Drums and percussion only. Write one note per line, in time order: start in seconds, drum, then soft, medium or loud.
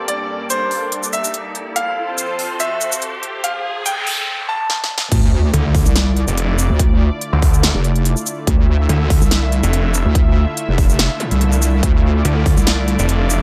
0.08 closed hi-hat medium
0.50 closed hi-hat medium
0.50 shaker medium
0.71 open hi-hat medium
0.92 closed hi-hat medium
1.03 shaker medium
1.13 closed hi-hat soft
1.13 shaker medium
1.24 closed hi-hat soft
1.24 shaker medium
1.34 closed hi-hat medium
1.55 closed hi-hat soft
1.76 closed hi-hat medium
2.18 closed hi-hat medium
2.18 shaker medium
2.39 open hi-hat medium
2.60 closed hi-hat medium
2.60 shaker medium
2.81 closed hi-hat medium
2.81 shaker medium
2.92 closed hi-hat medium
2.92 shaker medium
3.02 closed hi-hat medium
3.23 closed hi-hat soft
3.44 closed hi-hat medium
3.86 closed hi-hat medium
3.86 shaker medium
4.07 open hi-hat loud
4.70 snare medium
4.84 snare medium
4.98 snare loud
5.12 kick loud
5.12 closed hi-hat medium
5.12 crash loud
5.54 closed hi-hat medium
5.75 kick loud
5.75 open hi-hat medium
5.86 shaker medium
5.96 snare loud
5.96 closed hi-hat medium
6.17 closed hi-hat medium
6.28 closed hi-hat medium
6.28 shaker medium
6.37 closed hi-hat medium
6.58 closed hi-hat medium
6.58 shaker medium
6.79 kick loud
6.79 closed hi-hat medium
7.21 closed hi-hat medium
7.42 kick loud
7.42 open hi-hat medium
7.54 shaker medium
7.63 snare loud
7.63 closed hi-hat medium
7.84 closed hi-hat medium
7.96 closed hi-hat medium
8.05 closed hi-hat medium
8.17 shaker medium
8.26 closed hi-hat medium
8.26 shaker medium
8.47 kick loud
8.47 closed hi-hat medium
8.89 closed hi-hat medium
9.10 kick loud
9.10 open hi-hat medium
9.21 shaker medium
9.31 snare loud
9.31 closed hi-hat medium
9.52 closed hi-hat medium
9.63 closed hi-hat medium
9.63 shaker medium
9.73 closed hi-hat medium
9.94 closed hi-hat medium
9.94 shaker medium
10.15 kick loud
10.15 closed hi-hat medium
10.57 closed hi-hat medium
10.78 kick loud
10.78 open hi-hat medium
10.89 shaker medium
10.99 snare loud
10.99 closed hi-hat medium
11.20 closed hi-hat soft
11.31 closed hi-hat medium
11.41 closed hi-hat medium
11.52 shaker medium
11.62 closed hi-hat medium
11.62 shaker medium
11.83 kick loud
11.83 closed hi-hat medium
12.25 closed hi-hat medium
12.46 kick loud
12.46 open hi-hat medium
12.57 shaker medium
12.67 snare loud
12.67 closed hi-hat medium
12.88 closed hi-hat soft
12.99 closed hi-hat medium
12.99 shaker medium
13.09 closed hi-hat medium
13.30 closed hi-hat medium
13.30 shaker medium